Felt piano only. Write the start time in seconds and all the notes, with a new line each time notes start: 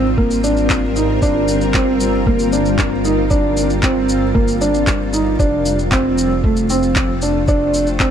0.18 A#3
0.44 D4
0.96 D#4
1.22 D4
1.74 C4
2.27 A#3
2.53 D4
3.05 D#4
3.30 D4
3.83 C4
4.34 A#3
4.61 D4
5.13 D#4
5.39 D4
5.91 C4
6.44 A3
6.70 C4
7.22 D4
7.48 D4
8.00 C4